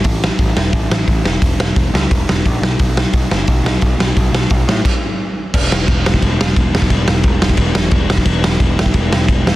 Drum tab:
CC |----------------|----------------|----------------|--------x-------|
HH |o---o---o---o---|o---o---o---o---|o---o---o---o---|o---o-----------|
SD |--o---o---o---o-|--o---o---o---o-|--o---o---o---o-|--o---o---------|
BD |o---o---o---o---|o---o---o---o---|o---o---o---o---|o---o---o-------|

CC |x---x---x---x---|x---x---x---x---|x---x---x---x---|
HH |----------------|----------------|----------------|
SD |--o---o---o---o-|--o---o---o---o-|--o---o---o---o-|
BD |o---o--oo---o--o|o---o--oo---o--o|o---o--oo---o---|